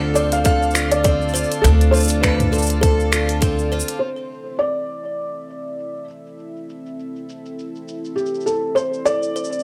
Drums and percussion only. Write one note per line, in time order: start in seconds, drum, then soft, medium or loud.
0.16 shaker medium
0.32 closed hi-hat soft
0.32 shaker soft
0.45 kick loud
0.45 closed hi-hat medium
0.45 shaker soft
0.63 shaker soft
0.71 shaker soft
0.75 finger snap medium
0.75 shaker medium
0.92 closed hi-hat soft
0.92 shaker soft
1.04 kick loud
1.04 closed hi-hat medium
1.04 shaker soft
1.22 shaker soft
1.28 shaker soft
1.35 shaker medium
1.44 shaker soft
1.52 closed hi-hat soft
1.52 shaker soft
1.64 kick loud
1.64 closed hi-hat medium
1.64 shaker soft
1.81 closed hi-hat soft
1.81 shaker soft
1.94 shaker soft
1.97 shaker soft
2.00 shaker soft
2.03 shaker medium
2.08 closed hi-hat soft
2.08 shaker medium
2.10 shaker soft
2.24 finger snap medium
2.24 kick loud
2.24 shaker soft
2.40 closed hi-hat soft
2.40 mid tom medium
2.40 shaker soft
2.54 shaker soft
2.58 shaker soft
2.62 shaker soft
2.66 closed hi-hat soft
2.66 shaker medium
2.83 kick loud
2.83 closed hi-hat medium
2.83 shaker soft
3.00 shaker soft
3.13 finger snap medium
3.13 closed hi-hat soft
3.13 shaker medium
3.29 closed hi-hat soft
3.29 shaker soft
3.42 kick loud
3.42 closed hi-hat medium
3.42 shaker soft
3.59 shaker soft
3.80 shaker medium
3.88 closed hi-hat soft
3.88 shaker soft
4.18 shaker soft
4.31 shaker medium
4.78 shaker soft
4.91 shaker medium
5.08 shaker soft
5.21 shaker soft
5.44 shaker soft
5.50 shaker medium
5.67 shaker soft
5.80 shaker soft
5.97 shaker soft
6.10 shaker medium
6.26 shaker soft
6.39 shaker soft
6.56 shaker soft
6.70 shaker medium
6.86 shaker soft
7.00 shaker soft
7.16 shaker soft
7.29 shaker medium
7.46 shaker soft
7.59 shaker soft
7.76 shaker soft
7.88 shaker medium
8.05 shaker soft
8.18 shaker soft
8.26 shaker soft
8.34 shaker soft
8.40 shaker soft
8.47 shaker medium
8.77 shaker soft
8.93 shaker soft
9.06 shaker medium
9.23 shaker soft
9.36 shaker soft
9.44 shaker soft
9.53 shaker soft
9.59 shaker soft